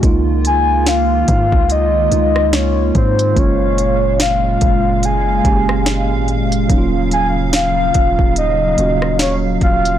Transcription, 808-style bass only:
X:1
M:4/4
L:1/16
Q:"Swing 16ths" 1/4=72
K:Db
V:1 name="808-style bass" clef=bass
D,,6 A,, D,,3 D,,4 A,,2 | G,,,6 G,,,4 G,,,3 A,,,3/2 G,,,3/2 | E,,,6 E,,, E,,,3 E,,,4 E,,,2 |]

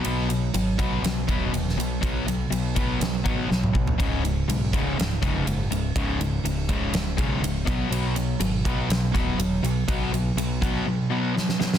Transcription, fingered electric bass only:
X:1
M:4/4
L:1/8
Q:1/4=122
K:Cblyd
V:1 name="Fingered electric bass" clef=bass
C,,2 A,,, C,, C,, E,,, E,,, C,, | C,,2 C,,2 C,, A,,, C,,2 | D,,,2 C,, D,,, D,,, F,,, G,,, D,,, | D,,,2 D,,,2 D,,, C,, D,,, C,, |
C,,2 A,,, C,, C,, z E,,, C,, | C,,2 C,,2 z4 |]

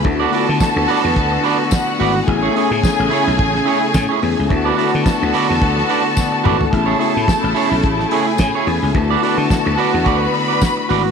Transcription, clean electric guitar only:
X:1
M:4/4
L:1/16
Q:"Swing 16ths" 1/4=108
K:Dlyd
V:1 name="Clean electric guitar"
z [FBd] [FBd] z3 [FBd] z3 [FBd] z3 [FBd] z | z [EGc] [EGc] z3 [EGc] z3 [EGc] z2 [EGc] z2 | z [FBd] [FBd] z3 [FBd] z3 [FBd] z3 [FBd] z | z [EGc] [EGc] z3 [EGc] z3 [EGc] z2 [EGc] z2 |
z [FBd] [FBd] z3 [FBd] z [FBd] z2 [FBd] z2 [FBd] z |]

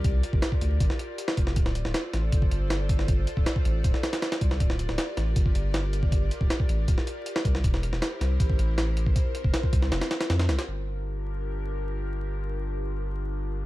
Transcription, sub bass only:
X:1
M:4/4
L:1/16
Q:1/4=158
K:Gm
V:1 name="Sub bass" clef=bass
C,,2 z G,,, z2 D,,2 G,,, z4 z F,,,2 | D,,,3 D,,, z2 A,,,2 G,,,2 G,,,6- | G,,,2 z D,,, z2 A,,,2 D,,, z4 z C,,2 | D,,,3 D,,, z2 A,,,2 G,,,2 G,,,6- |
G,,,2 z D,,, z2 A,,,2 D,,, z4 z C,,2 | =E,,,3 E,,, z2 C,,2 A,,,2 A,,,6 | z3 F,,, z2 C,,2 F,,, z3 F,,2 C,, z | G,,,16- |
G,,,16 |]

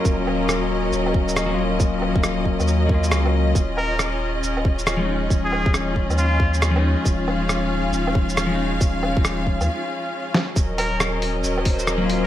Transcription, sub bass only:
X:1
M:4/4
L:1/16
Q:"Swing 16ths" 1/4=137
K:Ebdor
V:1 name="Sub bass" clef=bass
E,,,8 E,,,8 | E,,,3 E,,,4 E,,4- E,, D,,4 | E,,,8 E,,,8 | E,,,3 E,,,4 E,,8 z |
E,,,8 E,,,8 | E,,,3 E,,,4 E,, z8 | E,,,8 E,,,8 |]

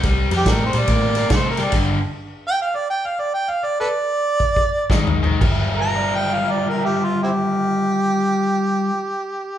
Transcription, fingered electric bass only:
X:1
M:4/4
L:1/8
Q:"Swing" 1/4=124
K:Gmix
V:1 name="Fingered electric bass" clef=bass
C,, F,, A,, _B,, A,,2 C,2 | G,,,2 z6 | z6 _A,,,2 | G,,,8- |
G,,,8 |]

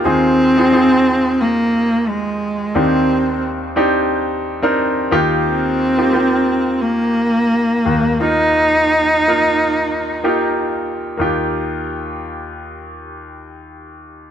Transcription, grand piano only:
X:1
M:4/4
L:1/16
Q:"Swing 16ths" 1/4=88
K:Eb
V:1 name="Grand piano"
[CEFA]2 z [CEFA] [CEFA]6- [CEFA] z4 z | [CDEG]4- [CDEG] z [CDEG]4 z [CDEB]3 [B,EFG]2- | [B,EFG]2 z [B,EFG] [B,EFG]6- [B,EFG] z4 z | [B,EFB]4- [B,EFB] z [B,EFB]4 z [B,EFG]4 z |
[B,EFG]16 |]
V:2 name="Grand piano" clef=bass
[E,,E,]16 | [E,,E,]12- [E,,E,]2 [E,,E,]2- | [E,,E,]12- [E,,E,]2 [E,,E,]2- | [E,,E,]12- [E,,E,]2 z2 |
E,,16 |]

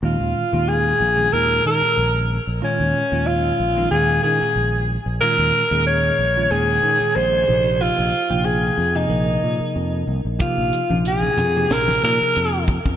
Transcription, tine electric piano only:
X:1
M:4/4
L:1/16
Q:"Swing 16ths" 1/4=92
K:Bbphr
V:1 name="Tine electric piano" clef=bass
[B,,E,A,DF]2 z [B,,E,A,DF]3 z [B,,E,A,DA] [B,,E,A,DF]6 z2 | [B,,E,A,DF]2 z [B,,E,A,DF]3 z [B,,E,A,DE] [B,,E,A,DF]6 z2 | [B,,E,A,DF]2 z [B,,E,A,DA]3 z [B,,E,A,DF] [B,,E,A,DA]6 [=C,F,B,E=G]2- | [=C,F,B,E=G]2 z [C,F,B,E=g]3 z [C,F,B,EG] [C,F,B,EB]6 z2 |
[=C,F,B,E=G]2 z [C,F,B,EF]3 z [C,F,B,EG] [C,F,B,EG]6 z2 |]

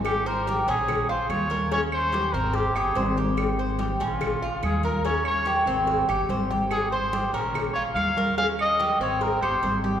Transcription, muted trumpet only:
X:1
M:4/4
L:1/8
Q:1/4=144
K:Ab
V:1 name="Muted trumpet"
G B2 A2 c d2 | d c2 B G A2 z | z3 F3 A B | d d3 z4 |
A c2 B2 d f2 | f e2 d B c2 z |]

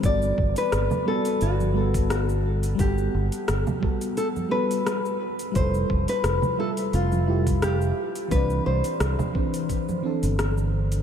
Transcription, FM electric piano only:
X:1
M:4/4
L:1/8
Q:"Swing 16ths" 1/4=87
K:G
V:1 name="FM electric piano"
[G,B,FA]3 [G,B,FA]2 [G,B,FA] z2 | [G,B,Af]3 [G,B,FA]2 [G,B,FA] z2 | [G,E=FA]3 [G,FAe]2 [G,EFG] z2 | [E,CDd]3 [E,CDc]2 [E,CDA] z2 |]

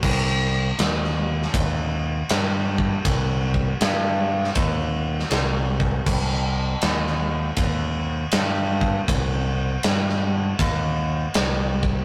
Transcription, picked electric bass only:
X:1
M:4/4
L:1/8
Q:"Swing" 1/4=80
K:Cm
V:1 name="Picked electric bass" clef=bass
C,,2 E,,2 E,,2 G,,2 | C,,2 G,,2 E,,2 C,,2 | C,,2 E,,2 E,,2 G,,2 | C,,2 G,,2 E,,2 C,,2 |]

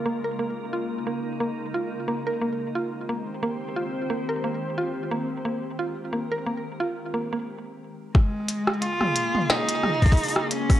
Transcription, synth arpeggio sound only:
X:1
M:4/4
L:1/16
Q:"Swing 16ths" 1/4=89
K:Bbdor
V:1 name="Synth arpeggio sound"
B, B B, z F z B, z B, z F z B, B B, z | F z B, z B, z F z B, B B, z F z B, z | B, z F z B, B B, z F z B, B, z4 | z16 |]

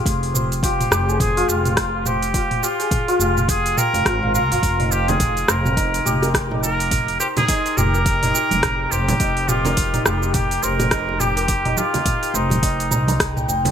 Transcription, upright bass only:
X:1
M:4/4
L:1/16
Q:"Swing 16ths" 1/4=105
K:Cphr
V:1 name="Upright bass" clef=bass
F,,,6 F,,,4 F,,,6- | F,,,2 z4 F,,,4 z F,,, A,,,2 C,, A,,, | F,,,6 F,,,4 F,,,6- | F,,,2 z4 F,,,4 z F,,,3 F,,, z |
F,,,6 F,,,4 F,,,6- | F,,,2 z4 F,,,4 C,,4 F,,, z |]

